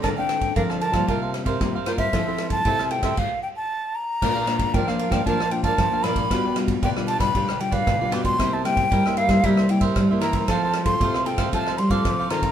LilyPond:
<<
  \new Staff \with { instrumentName = "Flute" } { \time 4/4 \key f \major \tempo 4 = 115 a''16 g''8. f''8 a''4 r4 c''16 e''16~ | e''8. a''8. g''8 f''8 g''16 a''8. bes''8~ | \key bes \major bes''4 g''16 f''8 g''16 a''8 g''16 a''8. ces'''8~ | ces'''4 g''8 a''16 b''8. g''16 f''8. d'''16 c'''16~ |
c'''16 a''16 g''4 f''8 e''8 g''16 r8. bes''8 | a''8. c'''8. g''8 a''8 c'''16 d'''8. bes''8 | }
  \new Staff \with { instrumentName = "Cavaquinho" } { \time 4/4 \key f \major <bes' d'' f'' a''>16 <d'' f'' a''>16 r8 <bes' d'' f'' a''>16 <d'' f'' a''>16 <bes' d'' f'' a''>16 <d'' f'' a''>16 <f' bes' c'' f''>16 <bes' c'' f''>16 r16 <bes' c'' f''>8 <bes' c'' f''>16 <f' bes' c'' f''>16 <bes' c'' f''>16 | <f' a' c'' e''>16 <a' c'' e''>16 r8 <f' a' c'' e''>16 <a' c'' e''>16 <f' a' c'' e''>16 <a' c'' e''>16 r2 | \key bes \major <d' bes' d'' f''>16 <bes' d'' f''>16 r8 <d' bes' d'' f''>16 <bes' d'' f''>16 <d' bes' d'' f''>16 <bes' d'' f''>16 <d' bes' d'' f''>16 <bes' d'' f''>16 r16 <bes' d'' f''>8 <bes' d'' f''>16 <d' bes' d'' f''>16 <bes' d'' f''>16 | <f' g' b' d''>16 <g' b' d''>16 r8 <f' g' b' d''>16 <g' b' d''>16 <f' g' b' d''>16 <g' b' d''>16 <f' g' b' d''>16 <g' b' d''>16 r16 <g' b' d''>8 <g' b' d''>16 <f' g' b' d''>16 <g' b' d''>16 |
<e' bes' c'' e''>16 <bes' c'' e''>16 r8 <e' bes' c'' e''>16 <bes' c'' e''>16 <e' bes' c'' e''>16 <bes' c'' e''>16 <e' bes' c'' e''>16 <bes' c'' e''>16 r16 <bes' c'' e''>8 <bes' c'' e''>16 <e' bes' c'' e''>16 <bes' c'' e''>16 | <f' a' c'' f''>16 <a' c'' f''>16 r8 <f' a' c'' f''>16 <a' c'' f''>16 <f' a' c'' f''>16 <a' c'' f''>16 <f' a' c'' f''>16 <a' c'' f''>16 r16 <a' c'' f''>8 <a' c'' f''>16 <f' a' c'' f''>16 <a' c'' f''>16 | }
  \new Staff \with { instrumentName = "Nylon-string guitar" } { \time 4/4 \key f \major << { <c' d' a'>16 <c' d' a'>8. <c' d' a'>8 r16 <g bes f'>4 r16 <g bes f'>16 r16 <g bes f'>8 | <c' e' a'>16 <c' e' a'>8. <c' e' a'>8. <c' e' a'>16 r2 | \key bes \major <bes d' f'>8 <bes d' f'>8. <bes d' f'>8 <bes d' f'>16 <bes d' f'>16 r16 <bes d' f'>8. <bes d' f'>8. | <g d' f'>16 r16 <g d' f'>8 r16 <g d' f'>8 <g d' f'>16 <g d' f'>16 r16 <g d' f'>8 r16 <g d' f'>8. |
<g bes e'>8 <g bes e'>8 r16 <g bes e'>8 <g bes e'>16 <g bes e'>8 <g bes e'>8 r16 <g bes e'>8. | <c' f' a'>8. <c' f' a'>8. <c' f' a'>16 r16 <c' f' a'>8 r16 <c' f' a'>8. <c' f' a'>16 r16 | } \\ { d4 d4 c4 g,4 | f4 c4 r2 | bes,4 f4 bes,4 f4 | b,4 b,4 b,4 b,4 |
c4 g,4 c4 g,4 | f4 c4 f4 c4 | } >> }
  \new Staff \with { instrumentName = "Nylon-string guitar" } { \clef bass \time 4/4 \key f \major d4 f8. f16 c8. c16 c8 r16 c16 | f4 c8. c16 r2 | \key bes \major bes,4 f8. f16 f4 f8 bes,8 | b,4 d8. d16 d4 d8 b,8 |
c4 g8. g16 g4 g8 e8 | f4 c8. c16 c8 g8 f8 ees8 | }
  \new DrumStaff \with { instrumentName = "Drums" } \drummode { \time 4/4 <bd cymr ss>8 <cymr ss>16 <bd cymr>16 <bd cymr>16 ss16 cymr16 <bd cymr ss>16 <bd cymr>8 <cymr ss>16 <bd cymr>16 <bd cymr ss>8 <cymr ss>16 <bd cymr>16 | <bd cymr ss>8 <cymr ss>16 <bd cymr>16 <bd cymr>16 ss16 cymr16 <bd cymr ss>16 <cymc bd>4 r4 | <cymc bd ss>8 <cymr ss>16 <bd cymr>16 <bd cymr>16 ss16 cymr16 <bd cymr ss>16 <bd cymr>16 ss16 cymr16 <bd cymr>16 <bd cymr ss>8 <cymr ss>16 <bd cymr>16 | <bd cymr ss>8 <cymr ss>16 <bd cymr>16 <bd cymr>16 ss16 cymr16 <bd cymr ss>16 <bd cymr>16 ss16 cymr16 <bd cymr>16 <bd cymr ss>8 <cymr ss>16 <bd cymr>16 |
<bd cymr ss>8 <cymr ss>16 <bd cymr>16 <bd cymr>16 ss16 cymr16 <bd cymr ss>16 <bd cymr>16 ss16 cymr16 <bd cymr>16 <bd cymr ss>8 <cymr ss>16 <bd cymr>16 | <bd cymr ss>8 <cymr ss>16 <bd cymr>16 <bd cymr>16 ss16 cymr16 <bd cymr ss>16 <bd cymr>16 ss16 cymr16 <bd cymr>16 <bd cymr ss>8 <cymr ss>16 <bd cymr>16 | }
>>